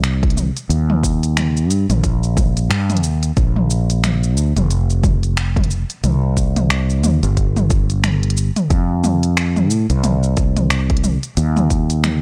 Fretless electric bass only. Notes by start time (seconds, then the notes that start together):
Already playing: C2
0.69 D#2
1.70 G2
1.89 A#1
2.70 G2
3.03 D#2
3.37 A#1
4.37 D2
4.56 F1
6.04 C2
7.04 D#2
7.23 G1
8.70 F2
9.70 A2
9.90 C2
11.37 D#2